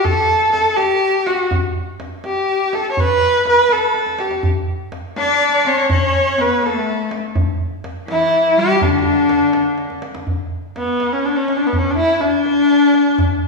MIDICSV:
0, 0, Header, 1, 4, 480
1, 0, Start_track
1, 0, Tempo, 486618
1, 53, Time_signature, 6, 3, 24, 8
1, 13295, End_track
2, 0, Start_track
2, 0, Title_t, "Kamancheh"
2, 0, Program_c, 0, 110
2, 45, Note_on_c, 0, 69, 111
2, 507, Note_off_c, 0, 69, 0
2, 513, Note_on_c, 0, 69, 105
2, 759, Note_on_c, 0, 67, 95
2, 774, Note_off_c, 0, 69, 0
2, 1248, Note_on_c, 0, 66, 80
2, 1262, Note_off_c, 0, 67, 0
2, 1491, Note_off_c, 0, 66, 0
2, 2225, Note_on_c, 0, 67, 91
2, 2716, Note_on_c, 0, 69, 96
2, 2731, Note_off_c, 0, 67, 0
2, 2870, Note_off_c, 0, 69, 0
2, 2876, Note_on_c, 0, 73, 75
2, 2960, Note_on_c, 0, 71, 113
2, 2975, Note_off_c, 0, 73, 0
2, 3428, Note_off_c, 0, 71, 0
2, 3440, Note_on_c, 0, 71, 107
2, 3674, Note_on_c, 0, 69, 92
2, 3689, Note_off_c, 0, 71, 0
2, 4142, Note_on_c, 0, 67, 76
2, 4157, Note_off_c, 0, 69, 0
2, 4379, Note_off_c, 0, 67, 0
2, 5112, Note_on_c, 0, 74, 98
2, 5603, Note_on_c, 0, 73, 93
2, 5618, Note_off_c, 0, 74, 0
2, 5829, Note_off_c, 0, 73, 0
2, 5840, Note_on_c, 0, 73, 93
2, 6323, Note_on_c, 0, 71, 92
2, 6338, Note_off_c, 0, 73, 0
2, 6569, Note_on_c, 0, 69, 77
2, 6584, Note_off_c, 0, 71, 0
2, 7092, Note_off_c, 0, 69, 0
2, 7996, Note_on_c, 0, 64, 105
2, 8476, Note_on_c, 0, 67, 107
2, 8491, Note_off_c, 0, 64, 0
2, 8711, Note_on_c, 0, 62, 91
2, 8726, Note_off_c, 0, 67, 0
2, 9903, Note_off_c, 0, 62, 0
2, 10625, Note_on_c, 0, 59, 82
2, 10976, Note_on_c, 0, 61, 76
2, 10991, Note_off_c, 0, 59, 0
2, 11100, Note_on_c, 0, 62, 75
2, 11115, Note_off_c, 0, 61, 0
2, 11208, Note_on_c, 0, 61, 78
2, 11223, Note_off_c, 0, 62, 0
2, 11408, Note_on_c, 0, 62, 83
2, 11423, Note_off_c, 0, 61, 0
2, 11509, Note_on_c, 0, 59, 72
2, 11524, Note_off_c, 0, 62, 0
2, 11626, Note_on_c, 0, 61, 84
2, 11640, Note_off_c, 0, 59, 0
2, 11743, Note_on_c, 0, 62, 79
2, 11757, Note_off_c, 0, 61, 0
2, 11797, Note_off_c, 0, 62, 0
2, 11803, Note_on_c, 0, 64, 101
2, 12045, Note_on_c, 0, 62, 102
2, 12060, Note_off_c, 0, 64, 0
2, 13295, Note_off_c, 0, 62, 0
2, 13295, End_track
3, 0, Start_track
3, 0, Title_t, "Cello"
3, 0, Program_c, 1, 42
3, 5097, Note_on_c, 1, 62, 95
3, 5583, Note_on_c, 1, 61, 85
3, 5598, Note_off_c, 1, 62, 0
3, 5813, Note_off_c, 1, 61, 0
3, 5819, Note_on_c, 1, 61, 84
3, 6298, Note_on_c, 1, 59, 73
3, 6313, Note_off_c, 1, 61, 0
3, 6539, Note_on_c, 1, 57, 74
3, 6554, Note_off_c, 1, 59, 0
3, 7077, Note_off_c, 1, 57, 0
3, 7967, Note_on_c, 1, 52, 83
3, 8460, Note_on_c, 1, 55, 90
3, 8475, Note_off_c, 1, 52, 0
3, 8702, Note_on_c, 1, 50, 77
3, 8717, Note_off_c, 1, 55, 0
3, 9898, Note_off_c, 1, 50, 0
3, 13295, End_track
4, 0, Start_track
4, 0, Title_t, "Tombak"
4, 47, Note_on_c, 9, 64, 81
4, 146, Note_off_c, 9, 64, 0
4, 292, Note_on_c, 9, 62, 26
4, 391, Note_off_c, 9, 62, 0
4, 529, Note_on_c, 9, 63, 75
4, 627, Note_off_c, 9, 63, 0
4, 768, Note_on_c, 9, 63, 70
4, 866, Note_off_c, 9, 63, 0
4, 1249, Note_on_c, 9, 63, 75
4, 1348, Note_off_c, 9, 63, 0
4, 1372, Note_on_c, 9, 62, 28
4, 1471, Note_off_c, 9, 62, 0
4, 1489, Note_on_c, 9, 64, 91
4, 1588, Note_off_c, 9, 64, 0
4, 1732, Note_on_c, 9, 62, 26
4, 1831, Note_off_c, 9, 62, 0
4, 1970, Note_on_c, 9, 63, 70
4, 2069, Note_off_c, 9, 63, 0
4, 2208, Note_on_c, 9, 63, 68
4, 2307, Note_off_c, 9, 63, 0
4, 2694, Note_on_c, 9, 63, 73
4, 2793, Note_off_c, 9, 63, 0
4, 2812, Note_on_c, 9, 62, 25
4, 2910, Note_off_c, 9, 62, 0
4, 2931, Note_on_c, 9, 64, 83
4, 3030, Note_off_c, 9, 64, 0
4, 3168, Note_on_c, 9, 62, 26
4, 3266, Note_off_c, 9, 62, 0
4, 3408, Note_on_c, 9, 63, 73
4, 3506, Note_off_c, 9, 63, 0
4, 3642, Note_on_c, 9, 63, 72
4, 3740, Note_off_c, 9, 63, 0
4, 3889, Note_on_c, 9, 63, 55
4, 3987, Note_off_c, 9, 63, 0
4, 4008, Note_on_c, 9, 62, 63
4, 4106, Note_off_c, 9, 62, 0
4, 4129, Note_on_c, 9, 63, 81
4, 4227, Note_off_c, 9, 63, 0
4, 4249, Note_on_c, 9, 62, 84
4, 4347, Note_off_c, 9, 62, 0
4, 4371, Note_on_c, 9, 64, 92
4, 4469, Note_off_c, 9, 64, 0
4, 4614, Note_on_c, 9, 62, 26
4, 4713, Note_off_c, 9, 62, 0
4, 4854, Note_on_c, 9, 63, 78
4, 4952, Note_off_c, 9, 63, 0
4, 5094, Note_on_c, 9, 63, 77
4, 5193, Note_off_c, 9, 63, 0
4, 5571, Note_on_c, 9, 63, 71
4, 5670, Note_off_c, 9, 63, 0
4, 5701, Note_on_c, 9, 62, 29
4, 5800, Note_off_c, 9, 62, 0
4, 5816, Note_on_c, 9, 64, 94
4, 5914, Note_off_c, 9, 64, 0
4, 6058, Note_on_c, 9, 62, 29
4, 6157, Note_off_c, 9, 62, 0
4, 6297, Note_on_c, 9, 63, 77
4, 6395, Note_off_c, 9, 63, 0
4, 6537, Note_on_c, 9, 63, 70
4, 6636, Note_off_c, 9, 63, 0
4, 7016, Note_on_c, 9, 63, 79
4, 7115, Note_off_c, 9, 63, 0
4, 7137, Note_on_c, 9, 62, 24
4, 7236, Note_off_c, 9, 62, 0
4, 7254, Note_on_c, 9, 64, 93
4, 7352, Note_off_c, 9, 64, 0
4, 7499, Note_on_c, 9, 62, 26
4, 7597, Note_off_c, 9, 62, 0
4, 7736, Note_on_c, 9, 63, 84
4, 7835, Note_off_c, 9, 63, 0
4, 7974, Note_on_c, 9, 63, 81
4, 8073, Note_off_c, 9, 63, 0
4, 8572, Note_on_c, 9, 62, 29
4, 8670, Note_off_c, 9, 62, 0
4, 8693, Note_on_c, 9, 64, 86
4, 8791, Note_off_c, 9, 64, 0
4, 8930, Note_on_c, 9, 62, 34
4, 9029, Note_off_c, 9, 62, 0
4, 9168, Note_on_c, 9, 63, 84
4, 9266, Note_off_c, 9, 63, 0
4, 9404, Note_on_c, 9, 63, 83
4, 9502, Note_off_c, 9, 63, 0
4, 9644, Note_on_c, 9, 63, 55
4, 9742, Note_off_c, 9, 63, 0
4, 9765, Note_on_c, 9, 62, 67
4, 9864, Note_off_c, 9, 62, 0
4, 9885, Note_on_c, 9, 63, 80
4, 9983, Note_off_c, 9, 63, 0
4, 10008, Note_on_c, 9, 62, 96
4, 10106, Note_off_c, 9, 62, 0
4, 10128, Note_on_c, 9, 64, 72
4, 10227, Note_off_c, 9, 64, 0
4, 10613, Note_on_c, 9, 63, 66
4, 10711, Note_off_c, 9, 63, 0
4, 10851, Note_on_c, 9, 63, 68
4, 10950, Note_off_c, 9, 63, 0
4, 11091, Note_on_c, 9, 62, 26
4, 11190, Note_off_c, 9, 62, 0
4, 11327, Note_on_c, 9, 63, 62
4, 11426, Note_off_c, 9, 63, 0
4, 11453, Note_on_c, 9, 62, 26
4, 11551, Note_off_c, 9, 62, 0
4, 11569, Note_on_c, 9, 64, 70
4, 11667, Note_off_c, 9, 64, 0
4, 12048, Note_on_c, 9, 63, 69
4, 12146, Note_off_c, 9, 63, 0
4, 12289, Note_on_c, 9, 63, 63
4, 12388, Note_off_c, 9, 63, 0
4, 12531, Note_on_c, 9, 62, 24
4, 12629, Note_off_c, 9, 62, 0
4, 12765, Note_on_c, 9, 63, 71
4, 12863, Note_off_c, 9, 63, 0
4, 12891, Note_on_c, 9, 62, 25
4, 12990, Note_off_c, 9, 62, 0
4, 13004, Note_on_c, 9, 64, 92
4, 13103, Note_off_c, 9, 64, 0
4, 13295, End_track
0, 0, End_of_file